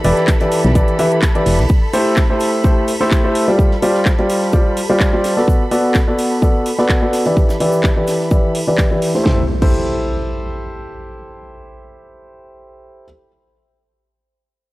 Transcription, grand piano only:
0.04 0.30 E3 loud
0.04 0.30 E4 medium
0.04 0.30 G4 medium
0.04 0.30 B4 medium
0.04 0.30 D5 loud
0.41 0.73 E3 medium
0.41 0.73 E4 medium
0.41 0.73 G4 medium
0.41 0.73 B4 medium
0.41 0.73 D5 medium
0.75 0.97 E3 medium
0.75 0.97 E4 medium
0.75 0.97 G4 medium
0.75 0.97 B4 medium
0.75 0.97 D5 medium
0.99 1.15 E3 medium
0.99 1.15 E4 medium
0.99 1.15 G4 medium
0.99 1.15 B4 medium
0.99 1.15 E5 loud
1.35 1.61 E3 medium
1.35 1.61 E4 medium
1.35 1.61 G4 medium
1.35 1.61 B4 medium
1.35 1.61 D5 medium
1.93 2.19 A3 medium
1.93 2.19 E4 medium
1.93 2.19 G4 medium
1.93 2.19 A4 medium
1.93 2.19 C5 loud
2.30 2.62 A3 medium
2.30 2.62 E4 medium
2.30 2.62 G4 medium
2.30 2.62 A4 medium
2.30 2.62 C5 medium
2.64 2.90 A3 medium
2.64 2.90 E4 medium
2.64 2.90 G4 medium
2.64 2.90 A4 medium
2.64 2.90 C5 medium
3.01 3.21 A3 medium
3.01 3.21 E4 medium
3.01 3.21 G4 medium
3.01 3.21 A4 medium
3.01 3.21 C5 loud
3.24 3.44 A3 medium
3.24 3.44 E4 medium
3.24 3.44 G4 medium
3.24 3.44 A4 medium
3.24 3.44 C5 medium
3.48 3.73 G3 medium
3.48 3.73 F4 medium
3.48 3.73 G4 medium
3.48 3.73 C5 medium
3.48 3.73 D5 medium
3.82 4.08 G3 medium
3.82 4.08 F4 medium
3.82 4.08 G4 medium
3.82 4.08 C5 medium
3.82 4.08 D5 loud
4.19 4.51 G3 medium
4.19 4.51 F4 medium
4.19 4.51 G4 medium
4.19 4.51 C5 medium
4.19 4.51 D5 medium
4.53 4.79 G3 medium
4.53 4.79 F4 medium
4.53 4.79 G4 medium
4.53 4.79 C5 medium
4.53 4.79 D5 medium
4.90 5.10 G3 medium
4.90 5.10 F4 medium
4.90 5.10 G4 medium
4.90 5.10 C5 medium
4.90 5.10 D5 loud
5.13 5.33 G3 medium
5.13 5.33 F4 medium
5.13 5.33 G4 medium
5.13 5.33 C5 medium
5.13 5.33 D5 medium
5.37 5.62 B3 medium
5.37 5.62 F#4 medium
5.37 5.62 A4 medium
5.37 5.62 B4 medium
5.37 5.62 D5 medium
5.71 5.97 B3 medium
5.71 5.97 F#4 medium
5.71 5.97 A4 medium
5.71 5.97 B4 medium
5.71 5.97 D5 loud
6.08 6.40 B3 medium
6.08 6.40 F#4 medium
6.08 6.40 A4 medium
6.08 6.40 B4 medium
6.08 6.40 D5 medium
6.42 6.68 B3 medium
6.42 6.68 F#4 medium
6.42 6.68 A4 medium
6.42 6.68 B4 medium
6.42 6.68 D5 medium
6.79 6.99 B3 medium
6.79 6.99 F#4 medium
6.79 6.99 A4 medium
6.79 6.99 B4 medium
6.79 6.99 D5 loud
7.02 7.22 B3 medium
7.02 7.22 F#4 medium
7.02 7.22 A4 medium
7.02 7.22 B4 medium
7.02 7.22 D5 medium
7.26 7.51 E3 medium
7.26 7.51 E4 medium
7.26 7.51 G4 medium
7.26 7.51 B4 medium
7.26 7.51 D5 medium
7.60 7.86 E3 medium
7.60 7.86 E4 medium
7.60 7.86 G4 medium
7.60 7.86 B4 medium
7.60 7.86 D5 loud
7.97 8.29 E3 medium
7.97 8.29 E4 medium
7.97 8.29 G4 medium
7.97 8.29 B4 medium
7.97 8.29 D5 medium
8.31 8.57 E3 medium
8.31 8.57 E4 medium
8.31 8.57 G4 medium
8.31 8.57 B4 medium
8.31 8.57 D5 medium
8.68 8.88 E3 medium
8.68 8.88 E4 medium
8.68 8.88 G4 medium
8.68 8.88 B4 medium
8.68 8.88 D5 loud
8.91 9.11 E3 medium
8.91 9.11 E4 medium
8.91 9.11 G4 medium
8.91 9.11 B4 medium
8.91 9.11 D5 medium
9.15 9.40 A3 medium
9.15 9.24 E4 medium
9.15 9.24 G4 medium
9.15 9.24 A4 medium
9.15 9.24 C5 medium
9.26 9.40 E4 medium
9.26 9.40 G4 medium
9.26 9.40 A4 medium
9.26 9.40 C5 medium
9.62 13.05 E4 medium
9.62 13.05 G4 medium
9.62 13.05 A4 medium
9.62 13.05 C5 medium

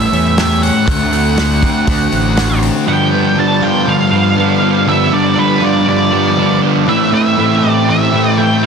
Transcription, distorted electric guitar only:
0.00 0.36 A2 medium
0.00 0.37 E3 loud
0.00 0.38 A3 loud
0.37 0.86 A2 medium
0.37 0.86 E3 medium
0.37 0.86 A3 medium
0.87 1.35 D3 medium
0.87 1.37 A3 loud
0.87 1.38 D4 medium
1.37 1.85 D3 medium
1.37 1.86 A3 medium
1.37 1.87 D4 medium
1.86 2.36 D3 medium
1.86 2.37 A3 medium
1.86 2.38 D4 loud
2.37 2.85 D3 medium
2.37 2.86 A3 medium
2.37 2.86 D4 medium
2.87 3.36 G2 medium
2.87 3.13 D3 loud
2.87 3.12 G3 loud
3.12 3.36 D3 medium
3.12 3.38 G3 medium
3.36 3.86 G2 medium
3.36 3.62 D3 medium
3.36 3.61 G3 medium
3.61 3.86 D3 medium
3.61 3.87 G3 medium
3.86 4.35 G2 medium
3.86 4.11 D3 medium
3.86 4.10 G3 loud
4.10 4.36 D3 medium
4.10 4.38 G3 medium
4.36 4.85 G2 medium
4.36 4.86 D3 medium
4.36 4.87 G3 medium
4.86 5.34 G2 medium
4.86 5.12 D3 medium
4.86 5.11 G3 loud
5.11 5.35 D3 medium
5.11 5.37 G3 medium
5.35 5.85 G2 medium
5.35 5.62 D3 medium
5.35 5.60 G3 medium
5.61 5.86 D3 medium
5.61 5.87 G3 medium
5.86 6.36 G2 medium
5.86 6.13 D3 medium
5.86 6.11 G3 loud
6.12 6.36 D3 medium
6.12 6.38 G3 medium
6.37 6.86 G2 medium
6.37 6.86 D3 medium
6.37 6.87 G3 medium
6.87 7.37 A2 medium
6.87 7.13 E3 loud
6.87 7.11 A3 loud
7.12 7.38 E3 medium
7.12 7.39 A3 medium
7.37 7.87 A2 medium
7.37 7.64 E3 medium
7.37 7.62 A3 medium
7.62 7.87 E3 medium
7.62 7.88 A3 medium
7.87 8.37 A2 loud
7.87 8.13 E3 loud
7.87 8.11 A3 loud
8.12 8.38 E3 medium
8.12 8.39 A3 medium
8.38 8.66 A2 medium
8.38 8.66 E3 medium
8.38 8.66 A3 medium

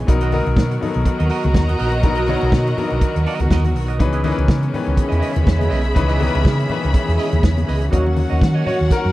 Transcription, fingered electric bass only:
0.09 0.39 B1 medium
0.47 0.58 B1 medium
0.57 0.77 B2 medium
0.96 1.04 B1 medium
1.20 1.29 D#2 medium
1.44 1.54 C#2 medium
1.54 1.75 D#2 medium
1.80 2.04 A#1 medium
2.04 2.35 B1 loud
2.43 2.51 B1 medium
2.52 2.73 B2 medium
2.92 3.00 B1 medium
3.16 3.25 D#2 medium
3.40 3.49 C#2 medium
3.51 3.76 D#2 medium
3.76 4.00 B1 medium
4.00 4.31 C#2 loud
4.38 4.47 C#2 medium
4.49 4.69 C#3 loud
4.87 4.96 C#2 medium
5.12 5.20 E2 medium
5.36 5.45 D#2 medium
5.47 5.67 E2 medium
5.71 5.91 B1 medium
5.96 6.27 C#2 medium
6.35 6.44 C#2 medium
6.45 6.65 C#3 loud
6.84 6.93 C#2 medium
7.08 7.17 E2 medium
7.33 7.42 D#2 medium
7.44 7.64 E2 loud
7.69 7.88 C#2 medium
7.93 8.24 D#2 medium
8.32 8.40 D#2 medium
8.42 8.62 D#3 medium
8.81 8.89 D#2 medium
9.05 9.12 F#2 medium

